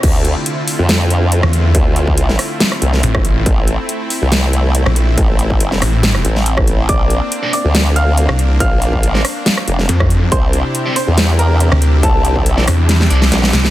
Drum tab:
CC |x---------------|----------------|----------------|----------------|
HH |x-x-x-o-x-x-x-x-|x-x-x-o-x-x-x-x-|x-x-x-o-x-x-x-x-|x-x-x-o-x-x-x-x-|
SD |--------o----r--|-----or-or-o-r--|--------o----r--|-----or-or-o-r--|
BD |o---------------|o--o---------o--|o---------------|o--o---------o--|

CC |----------------|----------------|----------------|----------------|
HH |x-x-x-o-x-x-x-x-|x-x-x-o-x-x-x-x-|x-x-x-o-x-x-x-x-|x-x-x-o-x-x-x-x-|
SD |--------o----r--|-----or-or-o-r--|--------o----r--|-----or-oo-ooooo|
BD |o---------------|o--o---------o--|o---------------|o--o------------|